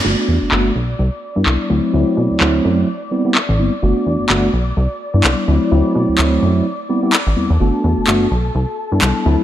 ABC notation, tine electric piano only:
X:1
M:4/4
L:1/16
Q:"Swing 16ths" 1/4=127
K:G
V:1 name="Tine electric piano"
[A,B,DF]4 [A,B,DF] z6 [G,B,DE]3 [F,A,CE]2 | [F,A,CE]4 [F,A,CE]4 z2 [G,B,CE] [G,B,CE] z2 [G,B,CE] z | [A,B,DF]4 [A,B,DF] z6 [G,B,DE]3 [F,A,CE]2 | [F,A,CE]4 [F,A,CE]4 z2 [G,B,CE] [G,B,CE] z2 [G,B,CE] z |
[A,B,DF]4 [A,B,DF] z6 [G,B,DE]3 [F,A,CE]2 |]